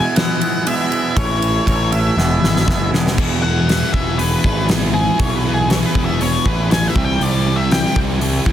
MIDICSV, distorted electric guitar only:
0, 0, Header, 1, 2, 480
1, 0, Start_track
1, 0, Tempo, 503356
1, 1112, Time_signature, 4, 2, 24, 8
1, 8128, End_track
2, 0, Start_track
2, 0, Title_t, "Distorted electric guitar"
2, 0, Program_c, 0, 30
2, 3030, Note_on_c, 0, 52, 100
2, 3038, Note_on_c, 0, 59, 94
2, 3047, Note_on_c, 0, 64, 87
2, 3052, Note_on_c, 0, 68, 97
2, 3271, Note_off_c, 0, 68, 0
2, 3275, Note_on_c, 0, 68, 59
2, 3283, Note_off_c, 0, 64, 0
2, 3287, Note_on_c, 0, 64, 63
2, 3293, Note_off_c, 0, 59, 0
2, 3296, Note_on_c, 0, 59, 52
2, 3508, Note_off_c, 0, 52, 0
2, 3512, Note_on_c, 0, 52, 72
2, 3516, Note_off_c, 0, 59, 0
2, 3520, Note_on_c, 0, 59, 74
2, 3522, Note_off_c, 0, 64, 0
2, 3526, Note_on_c, 0, 64, 84
2, 3530, Note_off_c, 0, 68, 0
2, 3533, Note_on_c, 0, 68, 67
2, 3742, Note_off_c, 0, 68, 0
2, 3753, Note_off_c, 0, 64, 0
2, 3753, Note_on_c, 0, 68, 75
2, 3756, Note_off_c, 0, 59, 0
2, 3757, Note_on_c, 0, 64, 74
2, 3768, Note_off_c, 0, 52, 0
2, 3768, Note_on_c, 0, 59, 64
2, 3772, Note_on_c, 0, 52, 73
2, 3983, Note_off_c, 0, 52, 0
2, 3983, Note_off_c, 0, 59, 0
2, 3987, Note_on_c, 0, 52, 75
2, 3994, Note_on_c, 0, 59, 77
2, 3998, Note_off_c, 0, 68, 0
2, 4000, Note_off_c, 0, 64, 0
2, 4003, Note_on_c, 0, 64, 77
2, 4009, Note_on_c, 0, 68, 81
2, 4225, Note_off_c, 0, 68, 0
2, 4236, Note_on_c, 0, 68, 78
2, 4240, Note_off_c, 0, 59, 0
2, 4242, Note_off_c, 0, 64, 0
2, 4246, Note_on_c, 0, 64, 74
2, 4252, Note_on_c, 0, 59, 76
2, 4254, Note_off_c, 0, 52, 0
2, 4258, Note_on_c, 0, 52, 64
2, 4472, Note_off_c, 0, 52, 0
2, 4474, Note_off_c, 0, 59, 0
2, 4476, Note_on_c, 0, 52, 73
2, 4485, Note_on_c, 0, 59, 80
2, 4486, Note_off_c, 0, 64, 0
2, 4487, Note_off_c, 0, 68, 0
2, 4490, Note_on_c, 0, 64, 74
2, 4499, Note_on_c, 0, 68, 81
2, 4705, Note_off_c, 0, 68, 0
2, 4716, Note_on_c, 0, 68, 66
2, 4725, Note_off_c, 0, 59, 0
2, 4725, Note_off_c, 0, 64, 0
2, 4729, Note_on_c, 0, 64, 59
2, 4736, Note_on_c, 0, 59, 54
2, 4949, Note_off_c, 0, 52, 0
2, 4951, Note_off_c, 0, 59, 0
2, 4953, Note_on_c, 0, 52, 106
2, 4963, Note_on_c, 0, 59, 95
2, 4965, Note_off_c, 0, 68, 0
2, 4966, Note_off_c, 0, 64, 0
2, 4970, Note_on_c, 0, 64, 102
2, 4977, Note_on_c, 0, 68, 96
2, 5184, Note_off_c, 0, 68, 0
2, 5196, Note_on_c, 0, 68, 57
2, 5203, Note_off_c, 0, 64, 0
2, 5206, Note_off_c, 0, 59, 0
2, 5207, Note_on_c, 0, 64, 56
2, 5217, Note_on_c, 0, 59, 55
2, 5432, Note_off_c, 0, 52, 0
2, 5432, Note_off_c, 0, 59, 0
2, 5435, Note_on_c, 0, 52, 68
2, 5443, Note_off_c, 0, 68, 0
2, 5443, Note_on_c, 0, 59, 69
2, 5445, Note_off_c, 0, 64, 0
2, 5449, Note_on_c, 0, 64, 69
2, 5455, Note_on_c, 0, 68, 79
2, 5666, Note_off_c, 0, 68, 0
2, 5677, Note_on_c, 0, 68, 71
2, 5682, Note_off_c, 0, 59, 0
2, 5683, Note_off_c, 0, 64, 0
2, 5687, Note_on_c, 0, 64, 70
2, 5693, Note_on_c, 0, 59, 69
2, 5694, Note_off_c, 0, 52, 0
2, 5698, Note_on_c, 0, 52, 59
2, 5916, Note_off_c, 0, 52, 0
2, 5917, Note_off_c, 0, 59, 0
2, 5919, Note_on_c, 0, 52, 70
2, 5927, Note_off_c, 0, 68, 0
2, 5928, Note_off_c, 0, 64, 0
2, 5928, Note_on_c, 0, 59, 76
2, 5931, Note_on_c, 0, 64, 70
2, 5939, Note_on_c, 0, 68, 77
2, 6141, Note_off_c, 0, 68, 0
2, 6153, Note_on_c, 0, 68, 80
2, 6156, Note_off_c, 0, 64, 0
2, 6157, Note_off_c, 0, 59, 0
2, 6160, Note_on_c, 0, 64, 81
2, 6169, Note_on_c, 0, 59, 81
2, 6173, Note_off_c, 0, 52, 0
2, 6176, Note_on_c, 0, 52, 71
2, 6388, Note_off_c, 0, 52, 0
2, 6388, Note_off_c, 0, 59, 0
2, 6392, Note_on_c, 0, 52, 69
2, 6399, Note_on_c, 0, 59, 79
2, 6401, Note_off_c, 0, 68, 0
2, 6402, Note_off_c, 0, 64, 0
2, 6406, Note_on_c, 0, 64, 81
2, 6412, Note_on_c, 0, 68, 93
2, 6623, Note_off_c, 0, 59, 0
2, 6630, Note_off_c, 0, 68, 0
2, 6634, Note_on_c, 0, 67, 76
2, 6637, Note_off_c, 0, 64, 0
2, 6641, Note_on_c, 0, 64, 85
2, 6645, Note_on_c, 0, 60, 66
2, 6649, Note_off_c, 0, 52, 0
2, 6653, Note_on_c, 0, 55, 68
2, 6656, Note_on_c, 0, 48, 71
2, 6867, Note_off_c, 0, 48, 0
2, 6871, Note_on_c, 0, 48, 86
2, 6873, Note_off_c, 0, 55, 0
2, 6877, Note_on_c, 0, 55, 86
2, 6879, Note_off_c, 0, 60, 0
2, 6883, Note_on_c, 0, 60, 90
2, 6885, Note_off_c, 0, 64, 0
2, 6889, Note_off_c, 0, 67, 0
2, 6889, Note_on_c, 0, 64, 96
2, 6893, Note_on_c, 0, 67, 104
2, 7108, Note_off_c, 0, 67, 0
2, 7111, Note_on_c, 0, 67, 57
2, 7119, Note_off_c, 0, 64, 0
2, 7123, Note_on_c, 0, 64, 64
2, 7130, Note_off_c, 0, 60, 0
2, 7133, Note_on_c, 0, 60, 51
2, 7343, Note_off_c, 0, 55, 0
2, 7347, Note_on_c, 0, 55, 72
2, 7353, Note_off_c, 0, 60, 0
2, 7357, Note_off_c, 0, 64, 0
2, 7357, Note_on_c, 0, 60, 65
2, 7361, Note_on_c, 0, 64, 76
2, 7362, Note_off_c, 0, 67, 0
2, 7365, Note_on_c, 0, 67, 86
2, 7583, Note_off_c, 0, 67, 0
2, 7587, Note_on_c, 0, 67, 75
2, 7590, Note_off_c, 0, 64, 0
2, 7593, Note_on_c, 0, 64, 82
2, 7594, Note_off_c, 0, 60, 0
2, 7598, Note_on_c, 0, 60, 79
2, 7600, Note_off_c, 0, 55, 0
2, 7604, Note_on_c, 0, 55, 63
2, 7606, Note_off_c, 0, 48, 0
2, 7610, Note_on_c, 0, 48, 70
2, 7822, Note_off_c, 0, 60, 0
2, 7823, Note_off_c, 0, 55, 0
2, 7827, Note_on_c, 0, 55, 70
2, 7830, Note_off_c, 0, 64, 0
2, 7833, Note_on_c, 0, 60, 75
2, 7841, Note_on_c, 0, 64, 77
2, 7843, Note_off_c, 0, 67, 0
2, 7847, Note_on_c, 0, 67, 88
2, 8060, Note_off_c, 0, 64, 0
2, 8062, Note_off_c, 0, 67, 0
2, 8066, Note_on_c, 0, 67, 90
2, 8068, Note_off_c, 0, 60, 0
2, 8072, Note_on_c, 0, 64, 93
2, 8077, Note_off_c, 0, 48, 0
2, 8078, Note_off_c, 0, 55, 0
2, 8079, Note_on_c, 0, 60, 86
2, 8082, Note_on_c, 0, 55, 82
2, 8088, Note_on_c, 0, 48, 83
2, 8128, Note_off_c, 0, 48, 0
2, 8128, Note_off_c, 0, 55, 0
2, 8128, Note_off_c, 0, 60, 0
2, 8128, Note_off_c, 0, 64, 0
2, 8128, Note_off_c, 0, 67, 0
2, 8128, End_track
0, 0, End_of_file